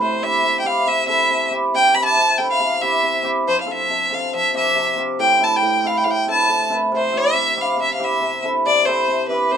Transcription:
0.01 0.42 C3 medium
0.01 0.24 C5 medium
0.22 0.33 C4 medium
0.22 0.33 E4 medium
0.22 0.34 G4 medium
0.22 0.59 E5 loud
0.43 0.85 C3 medium
0.60 0.68 G5 medium
0.64 0.75 C4 medium
0.64 0.76 E4 medium
0.64 0.76 G4 medium
0.64 0.89 F5 medium
0.86 1.29 C3 medium
0.86 1.07 E5 loud
1.07 1.19 C4 medium
1.07 1.19 E4 medium
1.07 1.20 A4 medium
1.07 1.48 E5 medium
1.30 1.73 C3 medium
1.51 1.62 C4 medium
1.51 1.62 E4 medium
1.51 1.63 G4 medium
1.74 2.15 C3 medium
1.74 1.96 G5 loud
1.94 2.06 C4 medium
1.94 2.06 E4 medium
1.94 2.06 G4 medium
1.94 2.04 B5 loud
2.05 2.39 A5 loud
2.16 2.59 C3 medium
2.38 2.49 C4 medium
2.38 2.49 E4 medium
2.38 2.50 A4 medium
2.38 2.49 G5 medium
2.50 2.83 F5 medium
2.60 3.01 C3 medium
2.81 2.92 C4 medium
2.81 2.92 E4 medium
2.81 2.93 G4 medium
2.81 3.25 E5 loud
3.03 3.51 C3 medium
3.23 3.35 C4 medium
3.23 3.35 E4 soft
3.23 3.35 G4 medium
3.47 3.95 F3 medium
3.47 3.61 C5 loud
3.61 3.73 F5 medium
3.66 3.78 C4 medium
3.66 3.78 F4 medium
3.66 3.78 A4 medium
3.71 4.15 E5 medium
3.89 4.74 C3 medium
4.10 4.21 C4 medium
4.10 4.22 F4 medium
4.10 4.22 A4 medium
4.10 4.34 F5 medium
4.33 4.81 F3 medium
4.33 4.54 E5 medium
4.54 4.65 C4 medium
4.54 4.65 F4 medium
4.54 4.66 G4 medium
4.54 4.96 E5 medium
4.75 5.24 C3 medium
4.95 5.07 C4 medium
4.95 5.08 F4 medium
4.95 5.08 G4 medium
5.19 5.61 A2 medium
5.19 5.45 G5 loud
5.39 5.51 C4 medium
5.39 5.51 E4 medium
5.39 5.52 A4 medium
5.43 5.57 A5 medium
5.56 5.88 G5 medium
5.62 6.04 A2 medium
5.84 5.95 C4 medium
5.84 5.95 E4 medium
5.84 5.95 A4 medium
5.84 5.99 F5 medium
5.97 6.05 G5 medium
6.04 6.48 A2 medium
6.04 6.12 F5 medium
6.11 6.28 G5 medium
6.27 6.38 C4 medium
6.27 6.38 E4 medium
6.27 6.38 A4 medium
6.27 6.69 A5 medium
6.49 6.97 A2 medium
6.70 6.81 C4 medium
6.70 6.81 E4 medium
6.70 6.81 B4 medium
6.92 7.33 C3 medium
6.92 7.19 C5 medium
7.12 7.24 C4 medium
7.12 7.24 E4 medium
7.12 7.24 G4 medium
7.18 7.62 E5 loud
7.34 7.76 C3 medium
7.55 7.67 C4 medium
7.55 7.67 E4 medium
7.55 7.68 G4 medium
7.61 7.80 F5 medium
7.77 8.19 C3 medium
7.82 7.94 E5 medium
7.94 8.09 C4 medium
7.94 8.06 F5 medium
7.99 8.10 E4 medium
7.99 8.11 G4 medium
8.04 8.45 E5 medium
8.21 8.64 C3 medium
8.43 8.54 C4 medium
8.43 8.54 E4 medium
8.43 8.54 A4 medium
8.66 9.06 C3 medium
8.66 8.86 D5 loud
8.85 8.97 C4 medium
8.85 8.97 E4 medium
8.85 8.97 A4 medium
8.85 9.28 C5 medium
9.08 9.51 C3 medium
9.29 9.40 C4 medium
9.29 9.40 E4 medium
9.29 9.40 G4 medium
9.29 9.53 B4 medium
9.51 9.57 C3 medium
9.51 9.57 C5 medium

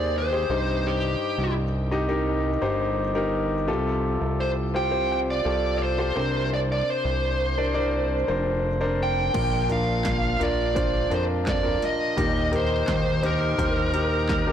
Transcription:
0.00 0.46 D#2 medium
0.00 0.52 C3 medium
0.00 0.33 G4 medium
0.00 0.33 G#4 medium
0.00 0.52 A#4 medium
0.00 0.33 C5 medium
0.00 0.17 D5 medium
0.18 0.89 C5 medium
0.33 0.49 G4 medium
0.33 0.50 G#4 medium
0.33 0.49 C5 medium
0.50 1.17 C2 medium
0.50 1.52 G2 medium
0.50 1.63 D#4 medium
0.50 1.64 G4 medium
0.50 1.64 C5 medium
0.87 1.53 G4 medium
1.38 2.58 C2 medium
1.91 2.05 D#4 medium
1.91 2.05 G4 medium
1.91 2.05 D#5 medium
2.09 2.48 D#4 medium
2.09 2.48 G4 medium
2.09 2.49 A#4 medium
2.62 3.70 G1 medium
2.62 3.01 D#4 medium
2.62 3.01 G4 medium
2.62 3.02 C5 medium
3.15 3.54 D#4 medium
3.15 3.55 G4 medium
3.15 3.55 A#4 medium
3.68 4.18 C2 medium
3.68 4.70 C3 medium
3.68 4.47 F4 medium
3.68 4.47 G4 medium
3.68 4.47 A4 medium
4.21 5.41 C2 medium
4.40 4.50 C5 medium
4.74 4.87 F4 medium
4.74 4.88 G4 medium
4.74 4.88 C5 medium
4.74 5.11 G5 medium
4.91 5.31 F4 medium
4.91 5.31 G4 medium
4.91 5.31 C5 medium
5.12 5.17 G5 loud
5.30 5.77 D5 medium
5.44 6.12 C2 medium
5.44 5.84 F4 medium
5.44 5.85 G4 soft
5.44 5.85 A4 medium
5.78 5.82 D5 medium
5.83 5.98 C5 medium
5.98 6.16 F4 medium
5.98 6.16 G4 medium
5.98 6.16 A4 medium
5.98 6.48 C5 medium
6.15 6.83 C2 medium
6.15 7.18 C3 medium
6.15 7.29 D4 medium
6.15 7.29 A#4 medium
6.15 7.29 C5 medium
6.54 6.58 D5 medium
6.72 6.90 D5 medium
6.90 8.30 C5 medium
7.05 8.25 C2 medium
7.58 7.71 D4 medium
7.58 7.71 A#4 medium
7.58 7.71 D5 medium
7.74 8.14 D4 medium
7.74 8.14 A#4 medium
7.74 8.14 D5 medium
8.28 9.31 F1 medium
8.28 8.68 D4 medium
8.28 8.68 A#4 medium
8.28 8.68 C5 medium
8.81 9.21 D4 medium
8.81 9.21 A#4 medium
8.81 9.21 C5 medium
9.03 9.68 G5 medium
9.34 10.37 A#1 loud
9.34 10.37 A#2 medium
9.34 10.37 F3 soft
9.34 9.61 D4 medium
9.34 9.61 F4 medium
9.34 9.61 A#4 medium
9.34 kick medium
9.34 closed hi-hat medium
9.34 crash medium
9.69 10.22 D4 medium
9.69 10.22 F4 medium
9.69 10.22 A#4 medium
9.69 10.44 F5 medium
9.69 closed hi-hat soft
9.69 floor tom medium
10.05 kick medium
10.05 snare medium
10.05 clap medium
10.05 closed hi-hat medium
10.39 11.07 A#1 medium
10.39 10.66 D4 medium
10.39 10.67 F4 medium
10.39 10.67 A#4 medium
10.39 11.13 D5 medium
10.39 closed hi-hat medium
10.39 floor tom medium
10.75 11.02 D4 medium
10.75 11.02 F4 medium
10.75 11.02 C5 medium
10.75 kick medium
10.75 closed hi-hat medium
11.10 11.78 F2 medium
11.10 11.50 D4 medium
11.10 11.50 F4 medium
11.10 11.50 A#4 medium
11.10 11.23 C5 medium
11.10 closed hi-hat medium
11.46 11.84 D5 medium
11.46 kick loud
11.46 snare loud
11.46 clap medium
11.46 closed hi-hat medium
11.63 12.03 D4 medium
11.63 12.03 F4 medium
11.63 12.03 A#4 medium
11.63 floor tom medium
11.82 12.50 D#5 medium
11.82 snare soft
11.82 closed hi-hat medium
12.17 12.84 D#2 medium
12.17 13.19 A#2 medium
12.17 12.43 D#4 medium
12.17 12.43 G4 medium
12.17 12.44 A#4 medium
12.17 kick medium
12.17 closed hi-hat medium
12.52 13.05 D#4 medium
12.52 13.05 G4 medium
12.52 13.05 A#4 medium
12.52 closed hi-hat medium
12.52 floor tom medium
12.56 13.27 C5 medium
12.87 13.55 D#2 loud
12.87 kick medium
12.87 snare loud
12.87 clap medium
12.87 closed hi-hat medium
13.23 13.50 D#4 medium
13.23 13.50 G4 medium
13.23 14.52 A#4 medium
13.23 13.50 C5 medium
13.23 closed hi-hat medium
13.23 floor tom medium
13.58 14.52 D#2 medium
13.58 13.85 D#4 medium
13.58 13.85 G4 medium
13.58 13.85 C5 medium
13.58 kick loud
13.58 closed hi-hat medium
13.93 14.33 D#4 medium
13.93 14.33 G4 medium
13.93 14.33 A#4 medium
13.93 closed hi-hat medium
14.29 kick loud
14.29 snare loud
14.29 clap medium
14.29 closed hi-hat medium
14.47 14.52 D#4 medium
14.47 14.52 G4 medium
14.47 14.52 A#4 medium
14.47 floor tom medium

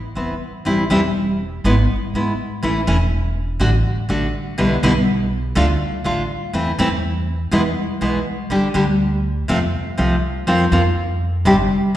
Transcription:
0.15 0.37 E1 medium
0.15 0.33 E3 soft
0.15 0.34 B3 medium
0.15 0.33 C4 medium
0.15 0.34 E4 medium
0.65 0.87 A1 medium
0.65 0.83 E3 medium
0.65 0.83 G3 medium
0.65 0.83 C4 medium
0.65 0.83 E4 medium
0.90 1.61 E1 medium
0.90 0.99 E3 medium
0.90 1.00 G3 medium
0.90 1.00 C4 medium
0.90 1.00 E4 loud
1.64 1.85 G#1 loud
1.64 1.74 G#3 medium
1.64 1.74 B3 loud
1.64 1.74 E4 medium
2.14 2.34 G#1 medium
2.14 2.31 G#3 medium
2.14 2.32 B3 medium
2.14 2.32 E4 medium
2.62 2.84 A1 medium
2.62 2.80 E3 medium
2.62 2.80 A3 medium
2.62 2.80 C#4 medium
2.62 2.80 E4 medium
2.87 3.57 E1 loud
2.87 2.96 E3 medium
2.87 2.96 A3 medium
2.87 2.96 C#4 loud
2.87 2.97 E4 loud
3.60 3.81 A1 loud
3.60 3.69 D3 medium
3.60 3.69 A3 medium
3.60 3.70 D4 loud
3.60 3.70 F#4 loud
4.09 4.30 A1 medium
4.09 4.26 D3 medium
4.09 4.26 A3 medium
4.09 4.26 D4 medium
4.09 4.27 F#4 medium
4.58 4.79 B1 medium
4.58 4.75 B2 medium
4.58 4.75 D3 medium
4.58 4.75 G3 medium
4.58 4.75 B3 medium
4.58 4.75 E4 medium
4.83 5.52 B1 loud
4.83 4.92 B2 loud
4.83 4.92 D3 loud
4.83 4.92 G3 loud
4.83 4.92 B3 loud
4.83 4.92 E4 loud
5.55 5.76 D2 loud
5.55 5.65 D3 loud
5.55 5.65 A3 loud
5.55 5.65 D4 loud
5.55 5.65 F4 loud
6.04 6.25 A1 medium
6.04 6.21 D3 medium
6.04 6.22 A3 medium
6.04 6.22 D4 medium
6.04 6.22 F4 medium
6.53 6.74 E2 medium
6.53 6.70 E3 medium
6.53 6.71 A3 medium
6.53 6.71 C4 medium
6.53 6.71 E4 medium
6.78 7.48 E2 loud
6.78 6.87 E3 medium
6.78 6.88 A3 loud
6.78 6.88 C4 loud
6.78 6.88 E4 loud
7.51 7.72 E2 loud
7.51 7.61 B2 medium
7.51 7.61 E3 loud
7.51 7.61 G#3 loud
7.51 7.61 B3 loud
7.51 7.61 E4 loud
8.01 8.22 B1 medium
8.01 8.18 B2 medium
8.01 8.18 E3 medium
8.01 8.18 G#3 medium
8.01 8.18 B3 medium
8.01 8.18 E4 medium
8.50 8.71 G1 medium
8.50 8.67 D3 medium
8.50 8.67 G3 medium
8.50 8.68 D4 medium
8.50 8.68 G4 medium
8.74 9.45 D2 loud
8.74 8.83 D3 medium
8.74 8.84 G3 medium
8.74 8.84 D4 medium
8.74 8.84 G4 medium
9.48 9.70 F2 loud
9.48 9.58 C3 medium
9.48 9.58 F3 medium
9.48 9.58 A3 loud
9.48 9.58 C4 medium
9.48 9.58 F4 loud
9.97 10.19 C2 medium
9.97 10.15 C3 medium
9.97 10.15 F3 medium
9.97 10.15 A3 medium
9.97 10.15 C4 medium
9.97 10.15 F4 medium
10.47 10.68 F2 medium
10.47 10.64 F3 medium
10.47 10.64 A#3 medium
10.47 10.65 C4 medium
10.47 10.65 F4 medium
10.72 11.42 F2 loud
10.72 10.81 F3 medium
10.72 10.81 A#3 medium
10.72 10.81 C4 medium
10.72 10.81 F4 medium
11.45 11.66 G1 loud
11.45 11.54 C3 medium
11.45 11.55 G3 medium
11.45 11.55 C4 medium
11.45 11.55 D4 loud
11.45 11.55 G4 loud

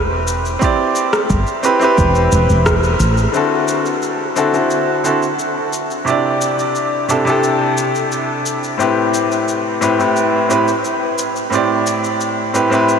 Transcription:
0.00 0.55 E1 medium
0.27 shaker medium
0.45 shaker soft
0.59 1.59 C4 medium
0.59 1.60 E4 medium
0.59 1.60 G4 medium
0.59 kick medium
0.59 shaker soft
0.64 1.61 D5 medium
0.96 shaker medium
1.13 cross-stick medium
1.13 shaker soft
1.30 1.43 G1 medium
1.30 kick medium
1.30 shaker soft
1.47 shaker soft
1.63 1.77 C4 medium
1.63 1.77 E4 medium
1.63 1.78 G4 medium
1.63 1.78 B4 medium
1.63 shaker medium
1.79 3.29 C4 medium
1.79 3.30 E4 medium
1.79 3.31 G4 medium
1.79 shaker soft
1.84 3.32 B4 loud
1.98 2.31 E1 medium
1.98 kick loud
1.98 shaker soft
2.15 shaker soft
2.32 2.45 E1 medium
2.32 shaker medium
2.49 2.94 E1 medium
2.49 shaker soft
2.66 kick loud
2.66 cross-stick medium
2.66 shaker soft
2.84 shaker soft
3.00 3.26 A1 loud
3.00 shaker medium
3.17 shaker soft
3.32 4.32 D3 medium
3.32 4.32 C4 medium
3.32 4.33 E4 medium
3.32 4.33 F#4 medium
3.32 shaker soft
3.37 4.34 A4 medium
3.68 shaker medium
3.86 shaker soft
4.02 shaker soft
4.36 4.51 D3 medium
4.36 4.51 C4 medium
4.36 4.52 E4 medium
4.36 4.52 F#4 medium
4.36 4.52 A4 medium
4.36 shaker medium
4.53 5.00 D3 medium
4.53 5.01 C4 medium
4.53 5.01 E4 medium
4.53 5.01 F#4 medium
4.53 5.01 A4 medium
4.53 shaker soft
4.70 shaker soft
5.04 5.22 D3 medium
5.04 5.23 C4 medium
5.04 5.23 E4 medium
5.04 5.23 F#4 medium
5.04 5.24 A4 medium
5.04 shaker medium
5.23 shaker soft
5.39 shaker soft
5.73 shaker medium
5.91 shaker soft
6.05 7.04 C3 medium
6.05 7.05 D4 medium
6.05 7.06 E4 medium
6.05 7.06 G4 medium
6.05 shaker soft
6.10 7.07 D5 medium
6.41 shaker medium
6.59 shaker soft
6.75 shaker soft
7.08 7.22 C3 medium
7.08 7.23 D4 medium
7.08 7.23 E4 medium
7.08 7.23 G4 medium
7.08 7.23 A4 medium
7.08 shaker medium
7.25 8.75 C3 medium
7.25 8.76 D4 medium
7.25 8.76 E4 medium
7.25 8.77 G4 medium
7.25 shaker soft
7.30 8.77 A4 medium
7.43 shaker soft
7.77 shaker medium
7.95 shaker soft
8.12 shaker soft
8.46 shaker medium
8.64 shaker soft
8.78 9.77 A2 medium
8.78 9.78 C4 medium
8.78 9.78 E4 medium
8.78 9.79 G4 medium
8.78 shaker soft
8.82 9.79 B4 medium
9.14 shaker medium
9.32 shaker soft
9.48 shaker soft
9.81 9.96 A2 medium
9.81 9.97 C4 medium
9.81 9.97 E4 medium
9.81 9.97 G4 medium
9.81 9.98 B4 medium
9.81 shaker medium
9.99 10.46 A2 medium
9.99 10.46 C4 medium
9.99 10.47 E4 medium
9.99 10.47 G4 medium
9.99 10.47 B4 medium
9.99 shaker soft
10.16 shaker soft
10.49 10.68 A2 medium
10.49 10.68 C4 medium
10.49 10.68 E4 medium
10.49 10.69 G4 medium
10.49 10.69 B4 medium
10.49 shaker medium
10.68 shaker soft
10.85 shaker soft
11.18 shaker medium
11.36 shaker soft
11.50 12.50 A2 medium
11.50 12.50 C4 medium
11.50 12.51 E4 medium
11.50 12.52 G4 medium
11.50 shaker soft
11.55 12.52 D5 medium
11.87 shaker medium
12.04 shaker soft
12.21 shaker soft
12.53 12.68 A2 medium
12.53 12.68 C4 medium
12.53 12.68 E4 medium
12.53 12.68 G4 medium
12.53 12.69 B4 medium
12.53 shaker medium
12.70 12.99 A2 medium
12.70 12.99 C4 medium
12.70 12.99 E4 medium
12.70 12.99 G4 medium
12.70 shaker soft
12.75 12.99 B4 medium
12.89 shaker soft

